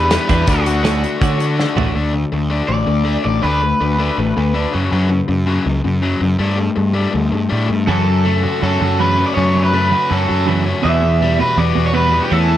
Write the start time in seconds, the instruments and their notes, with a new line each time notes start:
Already playing: overdriven electric guitar E2 B2 B3 G4, picked electric bass E2, tonewheel organ D4 G4 E5 B5
0.09 overdriven electric guitar E3 G3 B3 G4 B4, muted clean electric guitar stroke, snare, closed hi-hat
0.28 picked electric bass E2, clean electric guitar E3 G3 D4 E4, overdriven electric guitar E3 G3 B3 G4, kick, closed hi-hat
0.47 picked electric bass D2, overdriven electric guitar D3 A3 D4 F#4, tonewheel organ A4 D5 F#5 C#6, kick, closed hi-hat
0.64 overdriven electric guitar A3 D4 F#4, muted clean electric guitar stroke, closed hi-hat
0.83 overdriven electric guitar D3 A3 D4 F#4, clean electric guitar D3 A3 C#4 F#4, snare, closed hi-hat
1.04 muted clean electric guitar stroke, closed hi-hat
1.20 overdriven electric guitar D3 A3 D4 F#4, picked electric bass D3, clean electric guitar D3 A3 C#4 F#4, kick, closed hi-hat
1.38 overdriven electric guitar A3 D4 F#4, muted clean electric guitar stroke, closed hi-hat
1.58 overdriven electric guitar D3 A3 D4 F#4, muted clean electric guitar stroke, snare
1.76 picked electric bass A1, clean electric guitar D3 A3 C#4 F#4, overdriven electric guitar A3 D4 F#4, floor tom
1.95 picked electric bass D2, overdriven electric guitar D3 A3 D4
2.13 overdriven electric guitar D3 A3
2.32 picked electric bass D2, overdriven electric guitar D3 A3
2.50 overdriven electric guitar D3 A3 D4
2.68 picked electric bass A1, overdriven electric guitar D3 A3 D5
2.86 picked electric bass D2, overdriven electric guitar D3 A3
3.04 overdriven electric guitar D3 A3 D4
3.24 picked electric bass A1, overdriven electric guitar D3 A3 D5
3.42 picked electric bass D2, overdriven electric guitar D3 A3 D4 B4
3.62 overdriven electric guitar D3 A3
3.80 picked electric bass D2, overdriven electric guitar D3 A3
3.99 overdriven electric guitar D3 A3 D4
4.18 picked electric bass A1, overdriven electric guitar D3 A3
4.37 picked electric bass D2, overdriven electric guitar D3 A3
4.54 overdriven electric guitar D3 A3 D4
4.73 overdriven electric guitar F#2 C#3 F#3, picked electric bass F#2
4.92 overdriven electric guitar F#2 C#3 F#3, picked electric bass F#2
5.10 overdriven electric guitar F#2 C#3
5.28 overdriven electric guitar F#2 C#3, picked electric bass F#2
5.46 overdriven electric guitar F#2 C#3 F#3
5.65 picked electric bass C#2, overdriven electric guitar F#2 C#3
5.84 overdriven electric guitar F#2 C#3, picked electric bass F#2
6.02 overdriven electric guitar F#2 C#3 F#3
6.20 overdriven electric guitar F#2 C#3, picked electric bass F#2
6.39 picked electric bass G2, overdriven electric guitar G3 A3 D4
6.57 overdriven electric guitar G3 A3
6.76 picked electric bass G2, overdriven electric guitar G3 A3
6.93 overdriven electric guitar G3 A3 D4
7.12 picked electric bass D2, overdriven electric guitar G3 A3
7.32 picked electric bass G2, overdriven electric guitar G3 A3
7.49 picked electric bass A2, overdriven electric guitar G3 A3 D4
7.68 picked electric bass G2, overdriven electric guitar G3 A3
7.87 clean electric guitar F#2 C#3 E3, overdriven electric guitar F#2 A4, picked electric bass F#2
8.07 clean electric guitar F#2 C#3
8.25 clean electric guitar F#2 C#3, overdriven electric guitar A3
8.43 clean electric guitar F#2 C#3, overdriven electric guitar F#4
8.62 clean electric guitar F#2 C#3, picked electric bass F#2, overdriven electric guitar C#4 A4
8.81 clean electric guitar F#2 C#3, picked electric bass F#2, overdriven electric guitar F#4
8.99 clean electric guitar F#2 C#3 E3, overdriven electric guitar A3 B4
9.18 clean electric guitar F#2 C#3, overdriven electric guitar C#4
9.27 overdriven electric guitar D5
9.35 overdriven electric guitar F#2 C#5, clean electric guitar F#2 C#3, picked electric bass F#2
9.55 clean electric guitar F#2 C#3
9.64 overdriven electric guitar B4
9.73 clean electric guitar F#2 C#3, overdriven electric guitar A3 B4
9.91 clean electric guitar F#2 C#3, overdriven electric guitar F#4
10.10 clean electric guitar F#2 C#3, picked electric bass F#2, overdriven electric guitar C#4 A4
10.29 clean electric guitar F#2 C#3, picked electric bass F#2, overdriven electric guitar F#4
10.46 clean electric guitar F#2 C#3 E3, overdriven electric guitar A3
10.66 clean electric guitar F#2 C#3, overdriven electric guitar C#4
10.82 clean electric guitar E2 B2 E3, overdriven electric guitar E2 E5, picked electric bass E2
11.02 clean electric guitar E2 B2
11.21 clean electric guitar E2 B2, overdriven electric guitar G3
11.39 clean electric guitar E2 B2, overdriven electric guitar F#4 B4
11.57 clean electric guitar E2 B2, picked electric bass E2, overdriven electric guitar B3 D5
11.75 clean electric guitar E2 B2, picked electric bass E2, overdriven electric guitar F#4
11.87 overdriven electric guitar C#5
11.93 clean electric guitar E2 B2 E3, overdriven electric guitar G3 B4
12.11 clean electric guitar E2 B2, overdriven electric guitar B3
12.20 overdriven electric guitar F#4 G4
12.31 picked electric bass E2, clean electric guitar E3 A3 C#4, overdriven electric guitar E3 A4
12.49 clean electric guitar E3 A3